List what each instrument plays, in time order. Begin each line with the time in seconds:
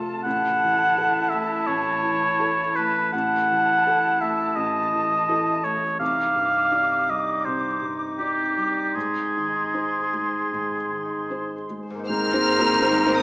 Already playing: felt piano F2 C3 A3 F4 A4, harp F2 C3 A3 F4, clarinet F4, flute section A5
0.01 harp A4
0.24 felt piano A1, harp A2, clarinet E4, oboe F#5, flute section A5
0.49 harp A3
0.63 felt piano E3
0.73 harp E4
0.97 felt piano E4 A4, harp A4
1.21 harp E4
1.29 felt piano A3, oboe E5
1.44 harp A4
1.67 felt piano A1, harp E3, oboe C#5
1.91 harp A3
2.03 felt piano E3
2.14 harp E4
2.38 felt piano E4 A4, harp A4
2.62 harp E4
2.76 felt piano A3, oboe B4
2.87 harp A4
3.11 felt piano A1, harp A2, clarinet E4, oboe F#5, flute section A5
3.37 harp A3
3.50 felt piano E3
3.61 harp E4
3.85 felt piano E4 A4, harp A4
4.09 harp E4
4.21 felt piano A3, oboe E5
4.33 harp A4
4.56 felt piano A1, harp E3, oboe D#5
4.80 harp A3
4.93 felt piano E3
5.04 harp E4
5.28 felt piano E4 A4, harp A4
5.52 harp E4
5.64 felt piano A3, oboe C#5
5.77 harp A4
5.99 felt piano C2, harp C3, clarinet D#4, oboe F5, flute section D6
6.25 harp G3
6.35 felt piano G2
6.48 harp D#4
6.72 felt piano D#4 D5, harp D6
6.97 harp G4
7.08 felt piano G3, oboe D#5
7.21 harp D5
7.45 felt piano C2, harp C4, oboe C5
7.70 harp G3
7.82 felt piano G2
7.95 harp D#4
8.18 felt piano D#4 D5, oboe G4, harp D5
8.44 harp G4
8.57 felt piano G3
8.70 harp D5
8.94 harp G#2, felt piano G#2, oboe G#4, flute section C6
9.22 harp G#3
9.36 felt piano D#3
9.48 harp D#4
9.74 felt piano D#4 C5, harp C5
9.99 harp G#4
10.13 felt piano G#3
10.27 harp C5
10.52 felt piano G#2, harp D#3
10.78 harp G#3
10.91 felt piano D#3
11.04 harp D#4
11.30 felt piano D#4 C5, harp C5
11.56 harp G#4
11.70 felt piano G#3
11.83 harp C5
11.90 harp G#2
11.95 harp A#3
11.99 harp D#4
12.04 french horn section A#3 C4, harp C5, flute section A#5
12.08 double bass section G#1, cello section G#2, felt piano G#2, viola section C4 A#4, clarinet D#4, oboe C5, violin section F6
12.33 felt piano A#3 D#4 C5
12.58 felt piano A#3 D#4 C5
12.81 felt piano A#3 D#4 C5
13.05 felt piano A#3 D#4 C5
13.18 violin section D#6